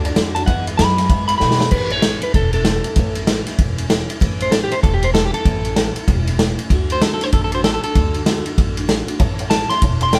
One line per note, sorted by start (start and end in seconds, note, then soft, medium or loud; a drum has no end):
0.00 0.15 D2 medium
0.00 0.13 A4 loud
0.04 0.15 A3 medium
0.04 0.15 D4 medium
0.04 0.16 F#4 medium
0.04 0.12 D5 medium
0.04 0.11 F#5 medium
0.04 0.12 A5 loud
0.04 ride medium
0.15 0.46 F2 medium
0.15 0.35 D3 medium
0.15 0.35 A3 loud
0.15 0.35 D4 medium
0.15 0.34 F#4 medium
0.15 0.28 D5 loud
0.15 0.28 F#5 medium
0.15 0.28 B5 loud
0.15 snare loud
0.15 ride medium
0.35 0.47 A3 medium
0.35 0.48 D4 medium
0.35 0.47 F#4 medium
0.35 0.43 D5 medium
0.35 0.43 F#5 medium
0.35 0.46 A5 loud
0.35 0.43 B5 medium
0.35 ride medium
0.46 0.66 E2 medium
0.46 0.78 E2 medium
0.46 0.67 B2 medium
0.46 0.67 E3 medium
0.46 0.67 G#3 medium
0.46 0.67 B3 loud
0.46 0.65 G#4 medium
0.46 0.59 E5 loud
0.46 0.65 F#5 medium
0.46 0.59 G#5 medium
0.46 0.59 B5 loud
0.46 kick loud
0.46 ride medium
0.67 0.79 E3 soft
0.67 0.79 G#3 soft
0.67 0.79 B3 medium
0.67 0.78 G#4 medium
0.67 0.74 E5 medium
0.67 0.74 G#5 medium
0.67 0.74 B5 medium
0.67 ride medium
0.77 0.98 E2 medium
0.77 1.09 F#2 medium
0.77 0.98 B2 medium
0.77 0.99 E3 medium
0.77 0.98 G#3 medium
0.77 0.98 B3 medium
0.77 0.97 G#4 medium
0.77 0.91 E5 medium
0.77 0.91 G#5 medium
0.77 1.27 B5 loud
0.77 0.91 D6 medium
0.77 snare loud
0.77 ride loud
0.98 1.08 E3 soft
0.98 1.09 G#3 medium
0.98 1.10 B3 soft
0.98 1.10 G#4 medium
0.98 1.05 E5 medium
0.98 1.05 G#5 medium
0.98 snare soft
0.98 ride medium
1.10 1.40 G#2 medium
1.10 1.29 E3 medium
1.10 1.29 G#3 medium
1.10 1.28 B3 medium
1.10 1.27 G#4 medium
1.10 1.22 E5 loud
1.10 1.22 G#5 medium
1.10 1.22 B5 loud
1.10 kick loud
1.10 ride medium
1.28 1.40 E3 soft
1.28 1.40 G#3 soft
1.28 1.41 B3 medium
1.28 1.40 G#4 medium
1.28 1.36 E5 medium
1.28 1.36 G#5 medium
1.28 1.37 B5 medium
1.28 ride medium
1.38 1.60 E2 medium
1.38 1.60 B2 medium
1.38 1.71 B2 medium
1.38 1.60 E3 medium
1.38 1.60 G#3 medium
1.38 1.60 B3 medium
1.38 1.53 G#5 medium
1.38 1.69 B5 loud
1.38 snare medium
1.42 1.59 G#4 medium
1.42 1.53 E5 medium
1.51 snare medium
1.60 1.70 E3 medium
1.60 1.71 G#3 medium
1.60 1.72 B3 medium
1.60 1.72 G#4 medium
1.60 1.68 E5 medium
1.60 1.67 G#5 medium
1.60 snare loud
1.71 2.15 A1 medium
1.71 1.91 A2 medium
1.71 1.91 E3 medium
1.71 1.91 A3 medium
1.71 1.89 C#4 medium
1.71 1.89 E4 medium
1.71 1.92 B4 medium
1.71 kick loud
1.71 crash loud
1.90 2.02 A3 soft
1.90 2.03 C#4 soft
1.90 2.02 E4 medium
1.90 2.22 C#5 medium
1.90 ride medium
2.02 2.22 A2 medium
2.02 2.22 E3 medium
2.02 2.23 A3 medium
2.02 2.22 C#4 medium
2.02 2.21 E4 medium
2.02 snare loud
2.02 ride medium
2.22 2.34 A3 soft
2.22 2.34 C#4 soft
2.22 2.34 E4 medium
2.22 2.34 B4 medium
2.22 ride medium
2.34 2.78 E1 medium
2.34 2.53 E3 medium
2.34 2.54 A3 medium
2.34 2.53 C#4 medium
2.34 2.52 E4 medium
2.34 2.53 A4 medium
2.34 kick loud
2.34 ride medium
2.53 2.65 A3 soft
2.53 2.65 C#4 medium
2.53 2.65 E4 medium
2.53 3.44 A4 medium
2.53 ride medium
2.65 2.85 A2 medium
2.65 2.85 E3 medium
2.65 2.85 A3 medium
2.65 2.85 C#4 medium
2.65 2.84 E4 medium
2.65 snare loud
2.65 ride medium
2.84 2.97 A3 soft
2.84 2.97 C#4 medium
2.84 2.97 E4 medium
2.84 ride medium
2.96 3.40 A1 medium
2.96 3.16 A2 loud
2.96 3.16 E3 loud
2.96 3.16 A3 loud
2.96 3.16 C#4 loud
2.96 3.15 E4 medium
2.96 kick loud
2.96 ride medium
3.15 3.28 A3 soft
3.15 3.28 C#4 medium
3.15 3.28 E4 medium
3.15 ride medium
3.27 3.47 A2 medium
3.27 3.47 E3 medium
3.27 3.48 A3 medium
3.27 3.48 C#4 medium
3.27 3.46 E4 medium
3.27 snare loud
3.27 ride loud
3.47 3.59 A3 medium
3.47 3.59 C#4 medium
3.47 3.59 E4 medium
3.47 snare soft
3.47 ride medium
3.58 4.02 E1 medium
3.58 3.78 E3 medium
3.58 3.78 A3 medium
3.58 3.78 C#4 medium
3.58 3.76 E4 medium
3.58 kick loud
3.58 ride medium
3.78 3.89 A3 medium
3.78 3.90 C#4 medium
3.78 3.90 E4 medium
3.78 ride medium
3.90 4.09 A2 medium
3.90 4.09 E3 medium
3.90 4.09 A3 medium
3.90 4.09 C#4 loud
3.90 4.08 E4 loud
3.90 snare loud
3.90 ride loud
4.09 4.20 A3 medium
4.09 4.21 C#4 medium
4.09 4.21 E4 medium
4.09 ride medium
4.20 4.65 A1 medium
4.20 4.40 A2 loud
4.20 4.41 E3 medium
4.20 4.41 A3 loud
4.20 4.40 C#4 medium
4.20 4.39 E4 loud
4.20 kick loud
4.20 ride medium
4.40 4.51 A3 soft
4.40 4.52 C#4 medium
4.40 4.51 E4 medium
4.40 4.52 C5 medium
4.40 ride medium
4.51 4.71 A2 medium
4.51 4.71 E3 medium
4.51 4.71 A3 medium
4.51 4.71 C#4 medium
4.51 4.69 E4 medium
4.51 4.62 A4 loud
4.51 snare loud
4.51 ride medium
4.63 4.73 G4 medium
4.71 4.82 A3 soft
4.71 4.82 C#4 medium
4.71 4.83 E4 medium
4.71 4.83 C5 medium
4.71 ride medium
4.83 5.27 E1 medium
4.83 5.02 E3 medium
4.83 5.03 A3 medium
4.83 5.02 C#4 medium
4.83 5.01 E4 medium
4.83 4.93 A4 medium
4.83 kick loud
4.83 ride medium
4.94 5.04 G4 medium
5.02 5.14 A3 soft
5.02 5.15 C#4 medium
5.02 5.15 E4 medium
5.02 5.13 C5 medium
5.02 ride medium
5.14 5.34 A2 medium
5.14 5.34 E3 medium
5.14 5.34 A3 medium
5.14 5.33 C#4 medium
5.14 5.32 E4 medium
5.14 5.25 A4 medium
5.14 snare loud
5.14 ride medium
5.25 5.34 G4 medium
5.33 5.45 A3 medium
5.33 5.45 C#4 medium
5.33 5.45 E4 medium
5.33 6.26 A4 loud
5.33 ride medium
5.45 5.89 A1 medium
5.45 5.65 A2 medium
5.45 5.65 E3 medium
5.45 5.65 A3 loud
5.45 5.64 C#4 medium
5.45 5.63 E4 loud
5.45 kick loud
5.45 ride medium
5.64 5.76 A3 soft
5.64 5.77 C#4 medium
5.64 5.77 E4 medium
5.64 ride medium
5.76 5.96 A2 medium
5.76 5.96 E3 medium
5.76 5.96 A3 medium
5.76 5.95 C#4 medium
5.76 5.94 E4 medium
5.76 snare loud
5.76 ride medium
5.96 6.08 A3 medium
5.96 6.08 C#4 medium
5.96 6.08 E4 medium
5.96 ride medium
6.08 6.52 E1 medium
6.08 6.28 E3 medium
6.08 6.28 A3 medium
6.08 6.27 C#4 medium
6.08 6.26 E4 medium
6.08 kick loud
6.08 ride medium
6.27 6.39 A3 medium
6.27 6.39 C#4 medium
6.27 6.40 E4 medium
6.27 ride medium
6.39 6.59 A2 medium
6.39 6.59 E3 medium
6.39 6.59 A3 medium
6.39 6.58 C#4 medium
6.39 6.57 E4 medium
6.39 snare loud
6.39 ride medium
6.58 6.70 A3 medium
6.58 6.71 C#4 medium
6.58 6.70 E4 medium
6.58 ride medium
6.70 7.14 D2 medium
6.70 6.90 D3 medium
6.70 6.90 A3 loud
6.70 6.90 D4 medium
6.70 6.89 F#4 loud
6.70 kick loud
6.70 ride medium
6.90 7.02 A3 soft
6.90 7.02 D4 soft
6.90 7.02 F#4 medium
6.90 7.02 C5 loud
6.90 ride medium
7.01 7.21 D3 medium
7.01 7.22 A3 medium
7.01 7.21 D4 medium
7.01 7.20 F#4 medium
7.01 7.12 A4 medium
7.01 snare loud
7.01 ride loud
7.14 7.24 A4 medium
7.21 7.34 A3 soft
7.21 7.34 D4 medium
7.21 7.33 F#4 medium
7.21 7.33 C5 medium
7.21 snare soft
7.21 ride medium
7.33 7.77 A1 medium
7.33 7.53 D3 medium
7.33 7.53 A3 medium
7.33 7.53 D4 medium
7.33 7.52 F#4 medium
7.33 7.43 A4 medium
7.33 kick loud
7.33 ride medium
7.44 7.54 A4 medium
7.52 7.64 A3 soft
7.52 7.65 D4 soft
7.52 7.65 F#4 medium
7.52 7.64 C5 medium
7.52 ride medium
7.64 7.84 D3 medium
7.64 7.84 A3 medium
7.64 7.84 D4 medium
7.64 7.83 F#4 medium
7.64 7.73 A4 medium
7.64 snare loud
7.64 ride medium
7.74 7.83 A4 medium
7.83 7.95 A3 soft
7.83 7.95 D4 medium
7.83 7.96 F#4 medium
7.83 8.75 A4 loud
7.83 ride medium
7.95 8.39 D2 medium
7.95 8.15 D3 medium
7.95 8.15 A3 loud
7.95 8.15 D4 medium
7.95 8.14 F#4 loud
7.95 kick loud
7.95 ride medium
8.14 8.26 A3 soft
8.14 8.26 D4 medium
8.14 8.27 F#4 soft
8.14 ride medium
8.26 8.46 D3 medium
8.26 8.46 A3 medium
8.26 8.46 D4 medium
8.26 8.44 F#4 medium
8.26 snare loud
8.26 ride medium
8.46 8.57 A3 medium
8.46 8.57 D4 medium
8.46 8.58 F#4 medium
8.46 ride medium
8.57 9.02 A1 medium
8.57 8.77 D3 medium
8.57 8.77 A3 medium
8.57 8.77 D4 medium
8.57 8.76 F#4 medium
8.57 kick loud
8.57 ride medium
8.77 8.87 A3 medium
8.77 8.87 D4 medium
8.77 8.88 F#4 medium
8.77 ride medium
8.88 9.08 D3 medium
8.88 9.08 A3 medium
8.88 9.07 D4 medium
8.88 9.06 F#4 loud
8.88 snare loud
8.88 ride medium
9.07 9.19 A3 medium
9.07 9.20 D4 medium
9.07 9.20 F#4 medium
9.07 ride medium
9.19 9.64 A1 loud
9.19 9.39 A2 medium
9.19 9.39 E3 loud
9.19 9.39 A3 loud
9.19 9.38 C#4 medium
9.19 9.37 E4 loud
9.19 9.31 C#5 loud
9.19 9.31 E5 loud
9.19 9.31 A5 loud
9.19 kick loud
9.19 ride medium
9.38 9.50 A3 medium
9.38 9.50 C#4 medium
9.38 9.51 E4 medium
9.38 9.47 C#5 medium
9.38 9.47 E5 medium
9.38 9.47 F#5 loud
9.38 ride medium
9.50 9.70 A2 medium
9.50 9.71 E3 medium
9.50 9.70 A3 medium
9.50 9.70 C#4 medium
9.50 9.68 E4 medium
9.50 9.63 C#5 medium
9.50 9.63 E5 medium
9.50 9.69 A5 loud
9.50 9.63 A5 medium
9.50 snare loud
9.50 ride loud
9.70 9.81 A3 soft
9.70 9.81 C#4 soft
9.70 9.82 E4 medium
9.70 9.77 C#5 medium
9.70 9.78 E5 medium
9.70 9.78 A5 medium
9.70 9.82 C6 medium
9.70 snare soft
9.70 ride medium
9.81 10.19 E1 medium
9.81 10.01 E3 medium
9.81 10.01 A3 medium
9.81 10.00 C#4 medium
9.81 9.99 E4 medium
9.81 9.94 C#5 loud
9.81 9.94 E5 medium
9.81 9.94 A5 loud
9.81 kick loud
9.81 ride loud
10.00 10.12 A3 soft
10.00 10.12 C#4 medium
10.00 10.12 E4 medium
10.00 10.09 C#5 medium
10.00 10.09 E5 medium
10.00 10.08 A5 medium
10.00 10.14 C6 medium
10.00 ride medium
10.12 10.19 A2 medium
10.12 10.19 E3 medium
10.12 10.19 A3 medium
10.12 10.19 C#4 medium
10.12 10.19 E4 medium
10.12 10.19 C#5 medium
10.12 10.19 E5 medium
10.12 10.19 G5 medium
10.12 10.19 A5 medium
10.12 snare loud
10.12 ride loud